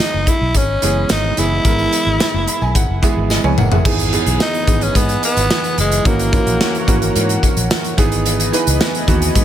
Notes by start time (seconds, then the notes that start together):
Already playing: E3 G#3 B3 D#4 G#4
0.00 snare
0.14 F#1
0.27 E4, kick, closed hi-hat
0.41 B1
0.54 G#1 C#4, kick, closed hi-hat, tambourine
0.82 F#1 E3 G#3 B3 G#4, closed hi-hat, tambourine
1.09 G#1 D#4, snare, closed hi-hat, tambourine
1.37 F#1 E3 G#3 B3 E4 G#4, closed hi-hat, tambourine
1.65 G#1 E3 G#3 B3 A#4, kick, closed hi-hat, tambourine
1.79 tambourine
1.93 closed hi-hat, tambourine
2.06 G#1
2.20 snare, closed hi-hat, tambourine
2.34 F#1
2.48 B5, closed hi-hat
2.61 B1 G#5, tambourine
2.75 G#1 F#5, kick, closed hi-hat, tambourine
2.89 F#1
3.02 E3 G#3 B3 G#4 E5, kick, closed hi-hat, tambourine
3.16 G#1
3.30 D#5, snare, tambourine
3.44 C#2 B4 C#5 G#5, high tom
3.58 F#1 A#4 F#5, mid tom, tambourine
3.71 G#4 E5, floor tom, tambourine
3.85 G#1 E3 B3 D#4 G#4 B4 D#5 G#5, kick, crash, tambourine
3.99 closed hi-hat, tambourine
4.12 E3 B3 D#4 G#4, closed hi-hat, tambourine
4.26 B1, closed hi-hat
4.40 D#4, snare, tambourine
4.54 closed hi-hat
4.67 G#1 E3 B3 D#4 G#4, kick, closed hi-hat
4.81 C#4, closed hi-hat, tambourine
4.95 G#2 B3, kick, closed hi-hat, tambourine
5.09 closed hi-hat
5.23 B3, closed hi-hat, tambourine
5.37 G#1, closed hi-hat
5.50 snare, tambourine
5.64 closed hi-hat
5.77 F#1 G#3, closed hi-hat, tambourine
5.92 closed hi-hat, tambourine
6.05 G#1 E3 A#3 C#4 F#4 A#4 C#5 F#5, kick, closed hi-hat, tambourine
6.19 closed hi-hat, tambourine
6.32 E3 A#3 C#4 F4, kick, closed hi-hat, tambourine
6.40 F#4
6.46 A#1, closed hi-hat
6.61 snare, tambourine
6.75 closed hi-hat
6.87 G#1 E3 A#3 C#4 F#4, kick, closed hi-hat
7.02 closed hi-hat
7.15 G#2, closed hi-hat, tambourine
7.29 closed hi-hat
7.43 kick, closed hi-hat, tambourine
7.57 A#1, closed hi-hat, tambourine
7.70 snare, tambourine
7.84 closed hi-hat
7.97 G#1 E3 B3 D#4 G#4 B4 D#5 G#5, kick, closed hi-hat, tambourine
8.12 closed hi-hat, tambourine
8.26 closed hi-hat, tambourine
8.40 closed hi-hat, tambourine
8.52 E3 B3 D#4 B4, closed hi-hat, tambourine
8.67 C#2, closed hi-hat, tambourine
8.80 snare, tambourine
8.95 closed hi-hat
9.08 D#2 E3 B3 D#4 F#4, kick, closed hi-hat
9.22 closed hi-hat
9.35 G#2, kick, closed hi-hat, tambourine